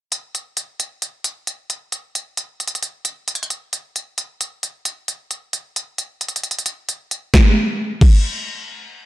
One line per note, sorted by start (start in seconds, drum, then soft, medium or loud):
0.12 closed hi-hat medium
0.35 closed hi-hat medium
0.57 closed hi-hat medium
0.80 closed hi-hat medium
1.02 closed hi-hat medium
1.24 closed hi-hat medium
1.47 closed hi-hat medium
1.70 closed hi-hat medium
1.92 closed hi-hat medium
2.15 closed hi-hat medium
2.37 closed hi-hat medium
2.60 closed hi-hat medium
2.67 closed hi-hat medium
2.75 closed hi-hat medium
2.83 closed hi-hat medium
3.05 closed hi-hat loud
3.28 closed hi-hat medium
3.35 closed hi-hat medium
3.43 closed hi-hat soft
3.50 closed hi-hat medium
3.73 closed hi-hat medium
3.96 closed hi-hat medium
4.18 closed hi-hat medium
4.41 closed hi-hat medium
4.63 closed hi-hat medium
4.85 closed hi-hat medium
5.08 closed hi-hat medium
5.31 closed hi-hat medium
5.53 closed hi-hat medium
5.76 closed hi-hat medium
5.98 closed hi-hat medium
6.21 closed hi-hat medium
6.28 closed hi-hat medium
6.36 closed hi-hat medium
6.43 closed hi-hat medium
6.51 closed hi-hat medium
6.59 closed hi-hat medium
6.66 closed hi-hat medium
6.89 closed hi-hat medium
7.11 closed hi-hat medium
7.34 kick loud
7.34 snare medium
8.01 kick loud
8.01 crash medium